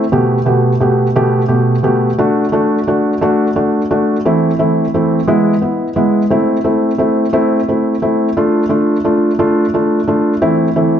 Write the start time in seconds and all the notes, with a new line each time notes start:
0.12 B2 A3 B3 G4
0.46 B2 A3 B3 G4
0.80 B2 A3 B3 G4
1.16 B2 A3 B3 G4
1.48 B2 A3 B3 G4
1.83 B2 A3 B3 G4
2.18 A3 D4 F#4
2.52 A3 D4 F#4
2.87 A3 D4 F#4
3.21 A3 D4 F#4
3.56 A3 D4 F#4
3.91 A3 D4 F#4
4.25 E3 A3 C4 E4
4.59 E3 A3 C4 E4
4.94 E3 A3 C4 E4
5.27 G#3 B3 E4
5.62 B3 E4
5.96 G#3 B3 E4
6.30 A3 C4 E4
6.64 A3 C4 E4
6.98 A3 C4 E4
7.33 A3 C4 E4
7.68 A3 C4 E4
8.02 A3 C4 E4
8.37 A3 D4 F4
8.69 A3 D4 F4
9.04 A3 D4 F4
9.39 A3 D4 F4
9.74 A3 D4 F4
10.07 A3 D4 F4
10.42 E3 A3 C4 E4
10.76 E3 A3 C4 E4